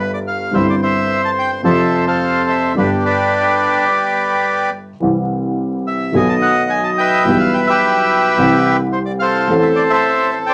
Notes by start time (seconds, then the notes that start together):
Already playing: G1 G2 D3 G3 B3 G4
0.00 B4
0.14 D5
0.27 F5
0.51 G1 G2 D3 G3 C4 C5 E5
0.56 E4
0.70 D5
0.82 C5 E5
1.25 A5
1.39 G5
1.63 F2 C3 F3 A3 A4 C5 E5
1.67 F4
2.07 A4 C5 F5
2.49 E5
2.75 G1 G2 D3 G3 B3 D4 G4 B4
2.79 G4
3.05 G4 B4 D5
5.00 C2 C3 E3 G3 C4 G4
5.87 E5
6.12 B1 B2 D#3 A3 B3 G#5
6.16 F#4 D#5
6.29 A5
6.42 F#5
6.70 G#5
6.84 A5
6.98 B4 E5 G5
7.26 B1 B2 E3 G3 B3 G4
7.40 F5
7.54 G5
7.67 G4 B4 E5
8.37 C2 C3 E3 G3 C4 G4
8.92 C5
9.06 D5
9.19 A4 C5 F5
9.47 A1 A2 E3 A3 C4
9.51 A4
9.62 E5
9.76 D5
9.90 A4 C5 E5
10.32 C5
10.46 C5 D5 G5